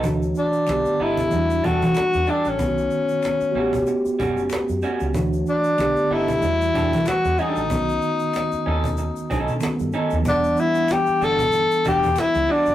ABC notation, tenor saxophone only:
X:1
M:4/4
L:1/16
Q:"Swing 16ths" 1/4=94
K:Edor
V:1 name="Tenor saxophone"
z2 D4 E4 F4 D C- | C8- C3 z4 z | z2 D4 E6 F2 ^D2- | ^D12 z4 |
D2 E2 G2 A4 G2 E2 D2 |]